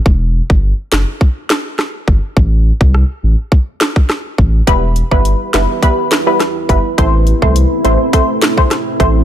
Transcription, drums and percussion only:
0.06 kick loud
0.50 kick medium
0.92 cross-stick medium
0.92 snare loud
1.21 kick loud
1.50 cross-stick loud
1.50 snare loud
1.79 cross-stick medium
1.79 snare medium
2.08 kick medium
2.37 kick loud
2.81 kick medium
2.94 cross-stick medium
3.52 kick loud
3.81 cross-stick medium
3.81 snare loud
3.96 kick medium
4.10 cross-stick medium
4.10 snare medium
4.38 kick medium
4.67 kick loud
4.67 closed hi-hat medium
4.96 closed hi-hat medium
5.11 kick medium
5.25 closed hi-hat medium
5.54 cross-stick medium
5.54 snare loud
5.54 closed hi-hat medium
5.83 kick loud
5.83 closed hi-hat medium
6.11 cross-stick medium
6.11 snare loud
6.11 closed hi-hat soft
6.40 cross-stick medium
6.40 snare medium
6.40 closed hi-hat medium
6.69 kick medium
6.69 closed hi-hat soft
6.98 kick loud
6.98 closed hi-hat medium
7.27 closed hi-hat medium
7.42 kick medium
7.56 closed hi-hat medium
7.85 closed hi-hat medium
8.13 kick medium
8.13 closed hi-hat medium
8.42 cross-stick medium
8.42 snare loud
8.42 closed hi-hat soft
8.58 kick medium
8.71 cross-stick medium
8.71 snare medium
8.71 closed hi-hat medium
9.00 kick medium
9.00 closed hi-hat soft

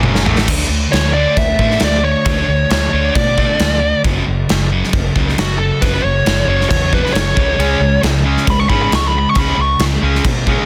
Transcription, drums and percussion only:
0.03 high tom medium
0.15 snare medium
0.26 mid tom medium
0.38 snare loud
0.48 kick loud
0.48 crash loud
0.48 crash medium
0.93 snare loud
0.93 crash medium
1.37 kick loud
1.37 crash medium
1.59 kick medium
1.71 snare soft
1.80 snare loud
1.80 crash medium
2.25 kick loud
2.25 crash medium
2.70 snare loud
2.70 crash medium
3.15 kick loud
3.15 crash medium
3.38 kick medium
3.59 snare loud
3.59 crash medium
4.04 kick loud
4.04 crash medium
4.49 snare loud
4.49 crash medium
4.84 snare soft
4.93 kick loud
4.93 crash medium
5.16 kick medium
5.29 snare soft
5.38 snare loud
5.38 crash medium
5.82 kick loud
5.82 crash medium
6.26 snare loud
6.26 crash medium
6.61 snare soft
6.71 kick loud
6.71 crash medium
6.93 kick medium
7.06 snare soft
7.15 snare loud
7.15 crash medium
7.37 kick loud
7.60 crash medium
8.03 snare loud
8.03 crash medium
8.37 snare soft
8.47 kick loud
8.47 crash medium
8.70 kick medium
8.92 snare loud
8.92 crash medium
9.35 kick loud
9.35 crash medium
9.79 snare loud
9.79 crash medium
10.15 snare soft
10.25 kick loud
10.25 crash medium
10.47 kick medium

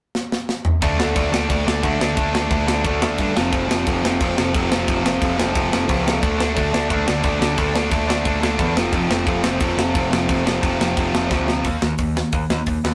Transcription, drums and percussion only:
0.15 snare medium
0.32 snare medium
0.49 snare medium
0.65 mid tom loud
0.82 kick loud
0.82 crash medium
1.00 snare loud
1.16 kick loud
1.16 crash medium
1.34 snare loud
1.50 kick loud
1.50 crash medium
1.68 snare loud
1.83 kick loud
1.83 crash medium
2.01 snare loud
2.17 kick loud
2.17 crash medium
2.35 snare loud
2.51 kick loud
2.51 crash medium
2.68 snare loud
2.84 kick loud
2.84 crash medium
3.02 snare loud
3.18 kick loud
3.18 crash medium
3.37 snare loud
3.52 kick loud
3.52 crash medium
3.71 snare loud
3.87 kick loud
3.87 crash medium
4.05 snare loud
4.20 kick loud
4.20 crash medium
4.38 snare loud
4.54 kick loud
4.54 crash medium
4.72 snare loud
4.88 kick loud
4.88 crash medium
5.06 snare loud
5.22 kick loud
5.22 crash medium
5.40 snare loud
5.55 kick loud
5.55 crash medium
5.73 snare loud
5.89 kick loud
5.89 crash medium
6.08 snare loud
6.23 kick loud
6.23 crash medium
6.40 snare loud
6.57 kick loud
6.57 crash medium
6.74 snare loud
6.90 kick loud
6.90 crash medium
7.08 snare loud
7.23 kick loud
7.23 crash medium
7.42 snare loud
7.58 kick loud
7.58 crash medium
7.76 snare loud
7.91 kick loud
7.91 crash medium
8.10 snare loud
8.25 kick loud
8.25 crash medium
8.43 snare loud
8.59 kick loud
8.59 crash medium
8.77 snare loud
8.92 kick loud
8.92 crash medium
9.11 snare loud
9.27 kick loud
9.27 crash medium
9.44 snare loud
9.60 kick loud
9.60 crash medium
9.79 snare loud
9.95 kick loud
9.95 crash medium
10.13 snare loud
10.29 kick loud
10.29 crash medium
10.47 snare loud
10.63 kick loud
10.63 crash medium
10.81 snare loud
10.97 kick loud
10.97 crash medium
11.15 snare loud
11.31 kick loud
11.31 snare medium
11.48 snare medium
11.64 kick loud
11.64 open hi-hat medium
11.82 snare loud
11.98 kick loud
11.98 open hi-hat medium
12.17 snare loud
12.32 kick loud
12.32 open hi-hat medium
12.50 snare loud
12.66 kick loud
12.66 open hi-hat medium
12.85 snare loud

